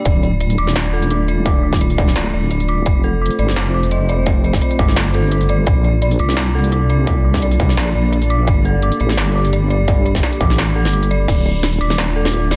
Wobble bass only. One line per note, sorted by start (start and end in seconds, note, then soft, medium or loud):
0.05 0.57 D1 loud
0.58 1.97 D#1 medium
1.98 2.15 D#1 medium
2.16 2.32 D1 medium
2.34 2.88 D1 medium
2.86 3.29 F1 loud
3.39 3.58 G1 medium
3.57 4.61 F1 medium
4.79 5.66 G1 medium
5.67 6.18 A#1 loud
6.19 7.59 C2 medium
7.60 7.76 C2 medium
7.77 7.94 A#1 medium
7.95 8.49 A#1 medium
8.48 8.91 G1 loud
9.00 9.19 A1 medium
9.18 10.22 G1 medium
10.41 10.87 A1 medium
10.85 11.27 G1 medium
11.28 11.80 D1 loud
11.81 12.56 D#1 medium